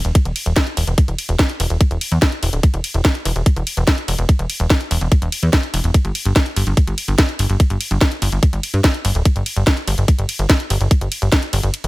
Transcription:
0.05 analog synth bass E1, closed hi-hat
0.15 kick, closed hi-hat, ride
0.25 analog synth bass E1, closed hi-hat
0.36 open hi-hat, ride
0.46 analog synth bass E1, closed hi-hat
0.56 kick, snare, closed hi-hat, ride
0.67 closed hi-hat
0.77 analog synth bass E1, open hi-hat, ride
0.87 analog synth bass E1, closed hi-hat
0.98 kick, closed hi-hat, ride
1.08 analog synth bass E1, closed hi-hat
1.19 open hi-hat, ride
1.29 analog synth bass E1, closed hi-hat
1.39 kick, snare, closed hi-hat, ride
1.50 closed hi-hat
1.60 analog synth bass E1, open hi-hat, ride
1.70 analog synth bass E1, closed hi-hat
1.81 kick, closed hi-hat, ride
1.91 analog synth bass E1, closed hi-hat
2.01 open hi-hat, ride
2.12 analog synth bass E2, closed hi-hat
2.22 kick, snare, closed hi-hat, ride
2.32 closed hi-hat
2.43 analog synth bass E1, open hi-hat, ride
2.53 analog synth bass D1, closed hi-hat
2.63 kick, closed hi-hat, ride
2.74 analog synth bass E1, closed hi-hat
2.84 open hi-hat, ride
2.94 analog synth bass E1, closed hi-hat
3.05 kick, snare, closed hi-hat, ride
3.15 closed hi-hat
3.25 analog synth bass E1, open hi-hat, ride
3.36 analog synth bass E1, closed hi-hat
3.46 kick, closed hi-hat, ride
3.56 analog synth bass E1, closed hi-hat
3.67 open hi-hat, ride
3.77 analog synth bass E1, closed hi-hat
3.87 kick, snare, closed hi-hat, ride
3.98 closed hi-hat
4.08 analog synth bass E1, open hi-hat, ride
4.19 analog synth bass E1, closed hi-hat
4.29 kick, closed hi-hat, ride
4.39 analog synth bass E1, closed hi-hat
4.50 open hi-hat, ride
4.60 analog synth bass E1, closed hi-hat
4.70 kick, snare, closed hi-hat, ride
4.81 closed hi-hat
4.91 analog synth bass E1, open hi-hat, ride
5.01 analog synth bass E1, closed hi-hat
5.12 kick, closed hi-hat, ride
5.22 analog synth bass E1, closed hi-hat
5.32 open hi-hat, ride
5.43 analog synth bass E2, closed hi-hat
5.53 kick, snare, closed hi-hat, ride
5.63 closed hi-hat
5.74 analog synth bass E1, open hi-hat, ride
5.84 analog synth bass E1, closed hi-hat
5.94 kick, closed hi-hat, ride
6.05 analog synth bass G1, closed hi-hat
6.15 open hi-hat, ride
6.25 analog synth bass G1, closed hi-hat
6.36 kick, snare, closed hi-hat, ride
6.46 closed hi-hat
6.56 analog synth bass G1, open hi-hat, ride
6.67 analog synth bass G1, closed hi-hat
6.77 kick, closed hi-hat, ride
6.87 analog synth bass G1, closed hi-hat
6.98 open hi-hat, ride
7.08 analog synth bass G1, closed hi-hat
7.18 kick, snare, closed hi-hat, ride
7.29 closed hi-hat
7.39 analog synth bass G1, open hi-hat, ride
7.50 analog synth bass G1, closed hi-hat
7.60 kick, closed hi-hat, ride
7.70 analog synth bass G1, closed hi-hat
7.81 open hi-hat, ride
7.91 analog synth bass G1, closed hi-hat
8.01 kick, snare, closed hi-hat, ride
8.12 closed hi-hat
8.22 analog synth bass G1, open hi-hat, ride
8.32 analog synth bass G1, closed hi-hat
8.43 kick, closed hi-hat, ride
8.53 analog synth bass G1, closed hi-hat
8.63 open hi-hat, ride
8.74 analog synth bass G2, closed hi-hat
8.84 kick, snare, closed hi-hat, ride
8.94 closed hi-hat
9.05 analog synth bass G1, open hi-hat, ride
9.15 analog synth bass D1, closed hi-hat
9.25 kick, closed hi-hat, ride
9.36 analog synth bass G1, closed hi-hat
9.46 open hi-hat, ride
9.56 analog synth bass G1, closed hi-hat
9.67 kick, snare, closed hi-hat, ride
9.77 closed hi-hat
9.88 analog synth bass G1, open hi-hat, ride
9.98 analog synth bass G1, closed hi-hat
10.08 kick, closed hi-hat, ride
10.19 analog synth bass G1, closed hi-hat
10.29 open hi-hat, ride
10.39 analog synth bass G1, closed hi-hat
10.50 kick, snare, closed hi-hat, ride
10.60 closed hi-hat
10.70 analog synth bass G1, open hi-hat, ride
10.81 analog synth bass G1, closed hi-hat
10.91 kick, closed hi-hat, ride
11.01 analog synth bass G1, closed hi-hat
11.12 open hi-hat, ride
11.22 analog synth bass G1, closed hi-hat
11.32 kick, snare, closed hi-hat, ride
11.43 closed hi-hat
11.53 analog synth bass G1, open hi-hat, ride
11.63 analog synth bass G1, closed hi-hat
11.74 closed hi-hat, ride
11.84 analog synth bass G1, closed hi-hat

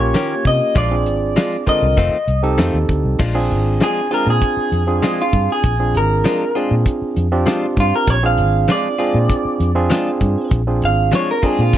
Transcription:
Already playing: fingered electric bass A#1, clean electric guitar C#5
0.00 tine electric piano A#3 C#4 F4 G4
0.14 clean electric guitar D#3 A#3 C#4 G4, snare, closed hi-hat, tambourine
0.45 fingered electric bass C3, clean electric guitar D#5, kick, closed hi-hat
0.75 fingered electric bass A#1, clean electric guitar F3 G#3 D4 F4 D5, kick, closed hi-hat
0.91 tine electric piano C4 D4 F4 G#4
1.06 fingered electric bass G#1, closed hi-hat
1.36 clean electric guitar F3 G#3 D4 F4, snare, closed hi-hat, tambourine
1.67 tine electric piano D3 C4 F4 A#4, clean electric guitar G#3 D4 F4 D#5, kick, closed hi-hat
1.82 fingered electric bass C2
1.97 fingered electric bass F1, clean electric guitar D#3 A3 C4 F4, kick, closed hi-hat
2.28 fingered electric bass C2, closed hi-hat
2.43 tine electric piano C4 D#4 G4 A4
2.58 fingered electric bass F2, clean electric guitar D#3 A3 C4 F4, snare, closed hi-hat, tambourine
2.74 fingered electric bass D#2
2.89 fingered electric bass D2, kick, closed hi-hat
3.05 fingered electric bass C2
3.19 fingered electric bass A#1, clean electric guitar F3 G#3 D4 F4, kick, crash
3.34 tine electric piano C4 D4 F4 G#4
3.50 fingered electric bass G#1, closed hi-hat
3.80 clean electric guitar F3 G#3 D4 F4 G#4, snare, closed hi-hat, tambourine
4.11 clean electric guitar G#3 D4 F4 A#4, tine electric piano C4 D4 F4 G#4, closed hi-hat
4.27 fingered electric bass A#2, clean electric guitar G#4
4.42 kick, closed hi-hat
4.57 muted fingered electric bass stroke
4.72 fingered electric bass F2, closed hi-hat
4.87 tine electric piano C4 D4 F4 G#4
5.03 clean electric guitar F3 G#3 D4 F4, snare, closed hi-hat, tambourine
5.22 clean electric guitar F4
5.33 fingered electric bass G2, kick, closed hi-hat
5.52 clean electric guitar G#4
5.64 fingered electric bass A#1, kick, closed hi-hat
5.79 tine electric piano C4 D4 F4 G#4
5.94 fingered electric bass G#1, clean electric guitar A#4, closed hi-hat
6.24 clean electric guitar F3 G#3 D4 F4, snare, closed hi-hat, tambourine
6.55 clean electric guitar G#3 D4 F4, tine electric piano C4 D4 F4 G#4, closed hi-hat
6.71 fingered electric bass A#2
6.86 kick, closed hi-hat
7.02 muted fingered electric bass stroke
7.16 fingered electric bass F2, closed hi-hat
7.32 tine electric piano C4 D4 F4 G4
7.46 clean electric guitar F3 G#3 D4 F4, snare, closed hi-hat, tambourine
7.77 fingered electric bass G2, clean electric guitar F4, kick, closed hi-hat
7.96 clean electric guitar A#4
8.07 fingered electric bass A#1, clean electric guitar C#5, kick, closed hi-hat
8.23 tine electric piano C4 D4 F4 G#4, clean electric guitar F5
8.38 fingered electric bass G#1, closed hi-hat
8.68 clean electric guitar F3 G#3 D4 F4 D5, snare, closed hi-hat, tambourine
8.98 clean electric guitar G#3 D4 F4, tine electric piano C4 D4 F4 G#4, closed hi-hat
9.14 fingered electric bass A#2
9.30 kick, closed hi-hat
9.45 muted fingered electric bass stroke
9.60 fingered electric bass F2, closed hi-hat
9.75 tine electric piano C4 D4 F4 G#4
9.90 clean electric guitar F3 G#3 D4 F4, snare, closed hi-hat, tambourine
10.21 fingered electric bass G2, kick, closed hi-hat
10.51 fingered electric bass A#1, kick, closed hi-hat
10.67 tine electric piano C4 D4 F4 G#4
10.82 fingered electric bass G#1, clean electric guitar F5, closed hi-hat
11.12 clean electric guitar F3 G#3 D4 F4 C#5, snare, closed hi-hat, tambourine
11.31 clean electric guitar A#4
11.42 clean electric guitar G#3 D4 F4 G#4, tine electric piano C4 D4 F4 G#4, kick, closed hi-hat
11.59 fingered electric bass A#2, clean electric guitar F4
11.73 kick, closed hi-hat

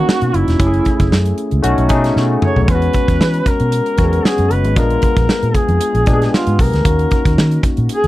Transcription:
Already playing: tine electric piano A#3 C#4 D#4 F#4, duduk F#4
0.09 snare
0.21 fingered electric bass B2, closed hi-hat
0.34 fingered electric bass F#1, duduk E4, closed hi-hat
0.48 fingered electric bass E1, snare, closed hi-hat
0.59 fingered electric bass F#1, tine electric piano A3 C#4 E4 G4, kick, closed hi-hat
0.67 tine electric piano G#4
0.74 closed hi-hat
0.85 kick, closed hi-hat
1.00 fingered electric bass F#1, kick, closed hi-hat
1.12 fingered electric bass F#2, snare
1.26 closed hi-hat
1.38 closed hi-hat
1.51 fingered electric bass C#2, closed hi-hat
1.63 fingered electric bass B1, tine electric piano A3 C#4 D#4 F#4, closed hi-hat
1.78 fingered electric bass B1, closed hi-hat
1.89 fingered electric bass B2, tine electric piano A3 C#4 D#4 G#4, kick, closed hi-hat
2.04 snare, closed hi-hat
2.16 fingered electric bass B2, snare
2.42 duduk C#5, mid tom
2.56 fingered electric bass B1, floor tom
2.63 tine electric piano G#3, duduk C#5
2.67 fingered electric bass E2, tine electric piano B3 C#4 F4, duduk B4, kick, closed hi-hat
2.75 tine electric piano F#4
2.82 closed hi-hat
2.93 kick, closed hi-hat
3.08 fingered electric bass E2, kick, closed hi-hat
3.21 fingered electric bass E3, snare
3.34 closed hi-hat
3.46 duduk A#4, kick, closed hi-hat
3.60 fingered electric bass B2, closed hi-hat
3.72 closed hi-hat
3.86 closed hi-hat
3.97 fingered electric bass E2, tine electric piano F#3 B3 C#4 F#4, kick, closed hi-hat
4.04 tine electric piano G#3
4.13 closed hi-hat
4.25 duduk G#4, snare
4.38 fingered electric bass F#2, closed hi-hat
4.51 fingered electric bass F#1, duduk B4, closed hi-hat
4.65 fingered electric bass G#1, closed hi-hat
4.76 fingered electric bass A#1, tine electric piano G#3 B3 D4 F4, duduk A#4, kick, closed hi-hat
4.90 closed hi-hat
5.02 kick, closed hi-hat
5.17 fingered electric bass A#1, kick, closed hi-hat
5.29 snare
5.42 fingered electric bass A#2, closed hi-hat
5.54 duduk G#4, kick, closed hi-hat
5.69 fingered electric bass F2, closed hi-hat
5.81 closed hi-hat
5.95 fingered electric bass A#1, closed hi-hat
6.06 fingered electric bass A#2, tine electric piano G#3 B3 D4 G4, kick, closed hi-hat
6.13 tine electric piano G#4
6.22 snare, closed hi-hat
6.34 duduk F4, snare
6.47 fingered electric bass G#2, closed hi-hat
6.59 fingered electric bass B1, duduk A#4, kick, open hi-hat
6.73 fingered electric bass D2, snare, closed hi-hat
6.84 fingered electric bass D#2, tine electric piano A#3 C#4 D#4 F#4, kick, closed hi-hat
6.99 closed hi-hat
7.11 kick, closed hi-hat
7.25 fingered electric bass D#2, kick, closed hi-hat
7.37 fingered electric bass D#3, snare
7.51 closed hi-hat
7.63 kick, closed hi-hat
7.77 fingered electric bass A#2, closed hi-hat
7.89 duduk G#4, closed hi-hat
8.04 fingered electric bass D#2, closed hi-hat

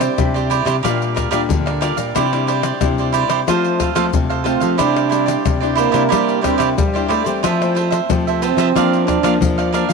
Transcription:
Already playing: nylon-string guitar C3 G3 D4 E4, trombone C4
0.00 cavaquinho G4 C5 D5, pandeiro, tamborim, shaker
0.18 nylon-string guitar C3 G3 D4 E4, pandeiro, tamborim, shaker, surdo
0.34 cavaquinho G4 C5 D5, pandeiro, shaker
0.50 cavaquinho E4 G4 C5 D5, pandeiro
0.65 nylon-string guitar C3, cavaquinho E4 G4 C5 D5, pandeiro, tamborim, shaker
0.83 nylon-string guitar A#2 G3 D4 F4, cavaquinho G4 A#4 D5 F5, pandeiro, tamborim, shaker, surdo
1.02 pandeiro, shaker
1.15 cavaquinho G4 A#4 D5 F5, pandeiro, tamborim, shaker, surdo
1.31 nylon-string guitar A#2 G3 D4 F4, cavaquinho G4 A#4 D5 F5, pandeiro, tamborim, shaker
1.49 nylon-string guitar A#2 D3, pandeiro, shaker, surdo
1.66 cavaquinho A#4 D5 F5, pandeiro, tamborim, shaker
1.81 nylon-string guitar G3 D4 F4, cavaquinho G4 A#4 D5 F5, pandeiro, tamborim, shaker
1.97 nylon-string guitar A#2, cavaquinho A#4 D5 F5, pandeiro, shaker
2.15 nylon-string guitar C3 G3 D4 E4, cavaquinho E4 G4 C5 D5, pandeiro, tamborim, shaker, surdo
2.32 nylon-string guitar G3 D4 E4, pandeiro, tamborim, shaker
2.47 cavaquinho E4 G4 C5 D5, pandeiro
2.63 cavaquinho G4 C5 D5, pandeiro, tamborim, shaker
2.81 nylon-string guitar C3 G3 D4 E4, pandeiro, tamborim, shaker, surdo
2.98 cavaquinho G4 C5 D5, pandeiro, shaker
3.12 cavaquinho E4 G4 C5 D5, pandeiro, shaker
3.29 nylon-string guitar C3, cavaquinho E4 G4 C5 D5, pandeiro, tamborim, shaker
3.47 nylon-string guitar F3 A3 C4 F4, cavaquinho F4 A4 C5 F5, pandeiro, tamborim, shaker, surdo
3.64 pandeiro, shaker
3.80 cavaquinho F4 A4 C5 F5, pandeiro, tamborim, shaker, surdo
3.95 nylon-string guitar F3 A3 C4 F4, cavaquinho F4 A4 C5 F5, pandeiro, tamborim, shaker
4.13 nylon-string guitar C3, pandeiro, shaker, surdo
4.29 cavaquinho A4 C5 F5, pandeiro, tamborim, shaker
4.44 nylon-string guitar A3 C4 F4, trombone C4, cavaquinho F4 A4 C5 F5, pandeiro, tamborim
4.60 nylon-string guitar F3, cavaquinho A4 C5 F5, pandeiro, shaker
4.78 nylon-string guitar C3 G3 D4 E4, trombone D4, cavaquinho E4 G4 C5 D5, pandeiro, tamborim, shaker, surdo
4.96 pandeiro, tamborim, shaker
5.09 nylon-string guitar G3 D4 E4, cavaquinho E4 G4 C5 D5, pandeiro, shaker
5.26 cavaquinho G4 C5 D5, pandeiro, tamborim, shaker
5.45 nylon-string guitar C3 G3, pandeiro, tamborim, shaker, surdo
5.60 nylon-string guitar G3 D4 E4, cavaquinho G4 C5 D5, pandeiro, shaker
5.75 trombone A#3, cavaquinho E4 G4 C5 D5, pandeiro, shaker
5.91 nylon-string guitar C3 G3 D4 E4, cavaquinho E4 G4 C5 D5, pandeiro, tamborim, shaker
6.09 nylon-string guitar C3 G3 D4 E4, cavaquinho E4 G4 C5 D5, pandeiro, tamborim, shaker, surdo
6.29 pandeiro, shaker
6.41 nylon-string guitar G3 D4 E4, trombone C4, cavaquinho E4 G4 C5 D5, pandeiro, tamborim, shaker, surdo
6.58 nylon-string guitar C3, cavaquinho E4 G4 C5 D5, pandeiro, tamborim, shaker
6.78 nylon-string guitar G3, pandeiro, shaker, surdo
6.93 nylon-string guitar G3 D4 E4, cavaquinho G4 C5 D5, pandeiro, tamborim, shaker
7.08 nylon-string guitar A3, cavaquinho E4 G4 C5 D5, pandeiro, tamborim
7.24 nylon-string guitar E3 G3 A3 C4, cavaquinho G4 C5 D5, pandeiro, shaker
7.43 nylon-string guitar F2 F3, cavaquinho F4 A4 C5 E5, pandeiro, tamborim, shaker, surdo
7.62 nylon-string guitar A3 C4, pandeiro, tamborim, shaker
7.75 cavaquinho F4 A4 C5 E5, pandeiro
7.90 cavaquinho A4 C5 E5, pandeiro, tamborim, shaker
8.09 nylon-string guitar C3 F3 A3 C4, pandeiro, tamborim, shaker, surdo
8.27 cavaquinho A4 C5 E5, pandeiro, shaker
8.42 trombone C4, cavaquinho F4 A4 C5 E5, pandeiro, shaker
8.57 nylon-string guitar F3, cavaquinho F4 A4 C5 E5, pandeiro, tamborim, shaker
8.75 nylon-string guitar F2 F3 A#3 D4, cavaquinho D4 A#4 D5 F5, pandeiro, tamborim, shaker, surdo
8.93 pandeiro, shaker
9.07 cavaquinho D4 A#4 D5 F5, trombone D4, pandeiro, tamborim, shaker, surdo
9.23 nylon-string guitar F3 A#3 D4, cavaquinho D4 A#4 D5 F5, pandeiro, tamborim, shaker
9.41 nylon-string guitar F2 F3, pandeiro, shaker, surdo
9.58 cavaquinho A#4 D5 F5, pandeiro, tamborim, shaker
9.72 nylon-string guitar F3 A#3 D4, cavaquinho D4 A#4 D5 F5, pandeiro, tamborim, shaker
9.89 nylon-string guitar F3, cavaquinho F5, pandeiro, shaker

